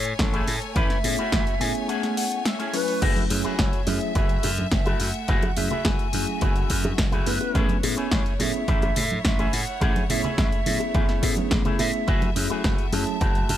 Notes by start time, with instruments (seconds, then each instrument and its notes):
Already playing: slap bass A2, string section A3 C#5 G#5, flute C#5
0.05 closed hi-hat
0.19 slap bass A1, flute A4, kick, snare, closed hi-hat
0.33 clean electric guitar A3 C#4 E4 G#4, closed hi-hat
0.47 slap bass A2, open hi-hat
0.62 closed hi-hat
0.75 slap bass A1, clean electric guitar A3 C#4 E4 B4, flute E5, kick, closed hi-hat
0.90 snare, closed hi-hat
1.03 slap bass A2, tine electric piano A3 B3 C#4 E4 G#4, open hi-hat
1.18 clean electric guitar A3 C#4 E4 F#4, muted slap bass stroke, closed hi-hat
1.32 slap bass A1, kick, snare, closed hi-hat
1.47 closed hi-hat
1.60 slap bass A2, tine electric piano A3 B3 C#4 E4 G#4, clean electric guitar G#5, open hi-hat
1.75 closed hi-hat
1.88 clean electric guitar A3 C#4 E4 G#4 F#5, closed hi-hat
2.03 snare, closed hi-hat
2.17 clean electric guitar F#5, open hi-hat
2.32 closed hi-hat
2.45 clean electric guitar E5, snare, closed hi-hat
2.59 clean electric guitar A3 C#4 E4 G#4, closed hi-hat
2.73 tine electric piano F#3 A3 C#4 E4 B4, flute B4, clean electric guitar C#5, open hi-hat
2.88 open hi-hat
3.01 slap bass F#1, clean electric guitar A3 E4 F#4 G#4, string section E5, kick, closed hi-hat, crash
3.16 closed hi-hat, high conga
3.30 slap bass F#2, tine electric piano F#3 A3 C#4 E4 G#4, open hi-hat
3.44 clean electric guitar A3 E4 F#4 G#4, muted slap bass stroke, closed hi-hat, high bongo
3.58 slap bass F#1, flute C#5, kick, snare, closed hi-hat
3.73 closed hi-hat
3.87 slap bass F#2, tine electric piano F#3 A3 C#4 E4 G#4, flute E5, open hi-hat, high bongo, high conga
4.01 closed hi-hat
4.15 slap bass F#1, clean electric guitar A3 E4 F#4 G#4, kick, closed hi-hat
4.29 closed hi-hat
4.43 slap bass F#2, open hi-hat, high bongo, low conga
4.58 closed hi-hat, high conga
4.71 slap bass F#1, flute E5, kick, snare, closed hi-hat
4.85 clean electric guitar A3 E4 F#4 A4, closed hi-hat, high bongo
5.00 slap bass F#2, flute F#5, open hi-hat
5.14 closed hi-hat
5.28 slap bass F#1, clean electric guitar A3 E4 F#4 G#4, string section F#4, kick, closed hi-hat
5.42 closed hi-hat, high bongo, high conga
5.57 slap bass F#2, tine electric piano F#3 A3 C#4 E4 G#4, flute E5, open hi-hat, low conga
5.70 clean electric guitar A3 E4 F#4 G#4, muted slap bass stroke, closed hi-hat, low conga
5.85 slap bass F#1, flute G#5, kick, snare, closed hi-hat, high bongo
5.99 closed hi-hat
6.13 slap bass F#2, tine electric piano F#3 A3 C#4 E4 G#4, open hi-hat, high conga
6.27 closed hi-hat
6.41 slap bass F#1, clean electric guitar A3 E4 F#4 G#4, kick, closed hi-hat, high bongo
6.56 closed hi-hat
6.70 slap bass F#2, kick, open hi-hat
6.84 closed hi-hat, high bongo, high conga
6.98 slap bass F#1, kick, snare, closed hi-hat
7.12 clean electric guitar A3 E4 F#4 G#4, closed hi-hat, low conga
7.26 slap bass F#2, tine electric piano A3 B3 C#4 E4 B4, flute B4, open hi-hat
7.41 closed hi-hat, high bongo
7.54 slap bass A1, clean electric guitar A3 C#4 E4 G#4, string section A3 E4 C#5, kick, closed hi-hat
7.69 closed hi-hat, high conga
7.83 slap bass A2, tine electric piano A3 B3 C#4 E4 G#4, open hi-hat, high bongo
7.97 clean electric guitar A3 C#4 E4 G#4, muted slap bass stroke, closed hi-hat
8.11 slap bass A1, flute C#5, kick, snare, closed hi-hat
8.26 closed hi-hat
8.39 slap bass A2, tine electric piano A3 B3 C#4 E4 G#4, flute E5, open hi-hat, high bongo, high conga
8.54 closed hi-hat
8.67 slap bass A1, clean electric guitar A3 C#4 E4 G#4, kick, closed hi-hat
8.82 closed hi-hat, high bongo
8.96 slap bass A2, open hi-hat, low conga
9.11 closed hi-hat, high conga
9.25 slap bass A1, flute E5, kick, snare, closed hi-hat
9.38 clean electric guitar A3 C#4 E4 G#4, closed hi-hat, high bongo
9.53 slap bass A2, flute F#5, open hi-hat
9.67 closed hi-hat
9.80 slap bass A1, clean electric guitar A3 C#4 E4 G#4, kick, closed hi-hat, high bongo
9.96 closed hi-hat, high conga
10.09 slap bass A2, tine electric piano A3 B3 C#4 E4 G#4, flute E5, open hi-hat, low conga
10.23 clean electric guitar A3 C#4 E4 G#4, muted slap bass stroke, closed hi-hat, low conga
10.38 slap bass A1, flute E5, kick, snare, closed hi-hat, high bongo
10.52 closed hi-hat
10.66 slap bass A2, tine electric piano A3 B3 C#4 E4 G#4, open hi-hat, high conga
10.80 closed hi-hat, high bongo
10.94 slap bass A1, clean electric guitar A3 C#4 E4 G#4, kick, closed hi-hat
11.09 snare, closed hi-hat
11.22 slap bass A2, tine electric piano A3 B3 C#4 E4 G#4, kick, open hi-hat
11.37 muted slap bass stroke, closed hi-hat, high bongo, high conga
11.51 slap bass A1, kick, snare, closed hi-hat
11.65 clean electric guitar A3 C#4 E4 G#4, closed hi-hat, low conga
11.79 slap bass A2, tine electric piano A3 B3 C#4 E4 G#4, flute E5, open hi-hat, high bongo
11.94 closed hi-hat
12.07 slap bass F#1, clean electric guitar A3 E4 F#4 G#4, string section E5, kick, closed hi-hat
12.22 closed hi-hat, high conga
12.35 slap bass F#2, tine electric piano F#3 A3 C#4 E4 G#4, open hi-hat
12.50 clean electric guitar A3 E4 F#4 G#4, muted slap bass stroke, closed hi-hat, high bongo
12.64 slap bass F#1, flute F#5, kick, snare, closed hi-hat
12.79 closed hi-hat
12.92 slap bass F#2, tine electric piano F#3 A3 C#4 E4 G#4, flute A5, open hi-hat, high bongo, high conga
13.07 closed hi-hat
13.20 slap bass F#1, clean electric guitar A3 E4 F#4 G#4, kick, closed hi-hat
13.35 closed hi-hat
13.49 slap bass F#2, open hi-hat, high bongo, low conga